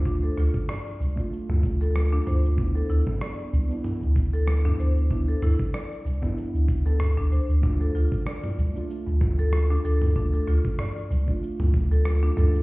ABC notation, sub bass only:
X:1
M:4/4
L:1/16
Q:"Swing 16ths" 1/4=95
K:Ddor
V:1 name="Sub bass" clef=bass
D,, z D,, z3 C,, z2 D,,4 z D,,2- | D,, z D,, z3 C,, z2 D,,4 z D,,2- | D,, z D,, z3 C,, z2 D,,4 D,, z D,,- | D,, z D,, z3 C,, z2 D,,4 z D,,2- |
D,, z D,, z3 C,, z2 D,,4 z D,,2 |]